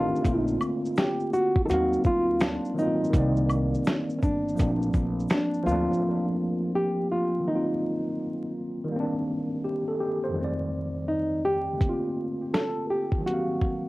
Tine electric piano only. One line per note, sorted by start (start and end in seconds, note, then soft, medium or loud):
0.00 0.26 D#3 medium
0.00 0.23 A3 medium
0.00 0.26 C4 medium
0.00 0.26 D4 medium
0.00 0.25 F4 medium
0.00 0.26 G4 medium
0.21 1.61 D3 medium
0.21 1.62 A3 medium
0.21 1.63 A#3 medium
0.27 1.64 C4 medium
0.27 1.65 F4 medium
1.65 2.72 F#3 medium
1.65 2.73 A#3 medium
1.65 2.71 D#4 medium
1.71 2.74 C4 medium
1.71 2.75 F5 medium
2.74 3.09 D#3 medium
2.74 3.11 F#3 medium
2.74 3.12 A#3 medium
2.80 3.13 C4 medium
2.80 3.14 F4 medium
3.10 4.50 D#3 medium
3.10 4.51 G3 medium
3.14 4.52 A#3 medium
3.14 4.53 C4 medium
3.14 4.54 D5 medium
4.55 5.60 F3 medium
4.55 5.61 A3 medium
4.55 5.62 A#3 medium
4.60 5.63 C4 medium
4.60 5.64 D4 medium
5.63 5.94 F3 medium
5.63 5.98 A3 medium
5.63 6.01 A#3 medium
5.69 6.02 C4 medium
5.69 6.03 D4 medium
5.95 7.40 F3 medium
5.95 7.42 A3 soft
6.03 7.44 A#3 medium
6.03 7.46 C4 soft
6.11 7.48 D4 medium
7.40 8.83 D#3 medium
7.40 8.87 F#3 soft
7.48 8.89 A#3 medium
7.48 8.91 C4 medium
7.55 8.93 F4 medium
8.84 10.29 D#3 medium
8.88 10.32 G3 medium
8.88 10.33 A#3 medium
8.96 10.36 C4 medium
8.96 10.37 D4 medium
9.64 9.86 G4 medium
9.88 10.00 A4 medium
10.00 10.22 G4 medium
10.24 10.58 C5 medium
10.28 11.74 F2 medium
10.28 11.76 D#3 medium
10.35 11.77 G3 medium
10.35 11.76 A3 medium
10.41 11.80 C4 medium
10.41 11.82 D5 medium
11.73 13.18 D3 medium
11.77 13.21 A3 soft
11.77 13.23 A#3 soft
11.85 13.25 C4 medium
11.85 13.27 F4 medium
13.18 13.89 D#3 medium
13.18 13.89 F#3 medium
13.26 13.89 A#3 medium
13.26 13.89 C4 medium
13.34 13.89 F5 medium